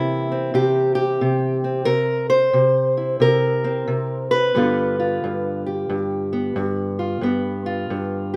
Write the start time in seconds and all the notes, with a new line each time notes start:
Already playing: C3 E3 A#3 C4 E4
0.32 C4
0.54 C3 G4
0.95 G4
1.21 C3
1.64 C4
1.85 C3 A#4
2.30 C5
2.53 C3
2.97 E4
3.20 C3 A#4
3.64 C4
3.87 C3
4.31 B4
4.55 G2 D3 B3 F4
5.00 F4
5.24 G2
5.66 G4
5.90 G2
6.33 B3
6.56 G2
6.99 F4
7.21 G2 B3
7.66 F4
7.90 G2